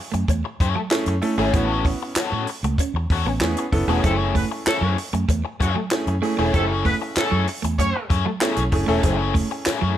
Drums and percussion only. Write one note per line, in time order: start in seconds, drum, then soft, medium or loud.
0.14 closed hi-hat medium
0.28 kick loud
0.28 closed hi-hat medium
0.60 kick loud
0.60 closed hi-hat medium
0.91 snare loud
0.91 clap medium
0.91 closed hi-hat medium
1.06 closed hi-hat medium
1.22 open hi-hat medium
1.53 kick loud
1.53 closed hi-hat medium
1.85 kick medium
1.85 open hi-hat medium
2.15 snare loud
2.15 clap loud
2.15 closed hi-hat loud
2.47 open hi-hat medium
2.64 closed hi-hat medium
2.78 kick loud
2.78 closed hi-hat medium
3.10 kick loud
3.10 open hi-hat medium
3.41 snare loud
3.41 clap medium
3.41 closed hi-hat medium
3.57 closed hi-hat medium
3.72 kick medium
3.72 open hi-hat medium
4.04 kick loud
4.04 closed hi-hat medium
4.35 kick medium
4.35 open hi-hat medium
4.66 snare loud
4.66 clap loud
4.66 closed hi-hat loud
4.98 open hi-hat medium
5.14 closed hi-hat medium
5.29 kick medium
5.29 closed hi-hat medium
5.61 kick loud
5.61 closed hi-hat medium
5.91 snare loud
5.91 clap medium
5.91 closed hi-hat medium
6.07 closed hi-hat medium
6.23 open hi-hat medium
6.54 kick loud
6.54 closed hi-hat medium
6.85 kick medium
6.85 open hi-hat medium
7.16 snare loud
7.16 clap loud
7.16 closed hi-hat loud
7.47 open hi-hat medium
7.64 closed hi-hat medium
7.79 kick medium
7.79 closed hi-hat medium
8.10 kick loud
8.10 closed hi-hat medium
8.41 snare loud
8.41 clap loud
8.41 closed hi-hat medium
8.56 closed hi-hat medium
8.72 kick medium
8.72 open hi-hat medium
9.03 kick loud
9.03 closed hi-hat medium
9.35 kick loud
9.35 open hi-hat medium
9.65 snare loud
9.65 clap medium
9.65 closed hi-hat loud